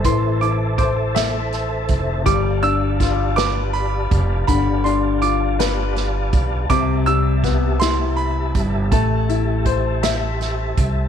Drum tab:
HH |xxxxxx|xxxxxx|xxxxxx|xxxxxx|
SD |---oo-|--oo--|---oo-|--oo--|
BD |o-o--o|o-o--o|o----o|o-o--o|

HH |xxxxxx|
SD |---oo-|
BD |o-o--o|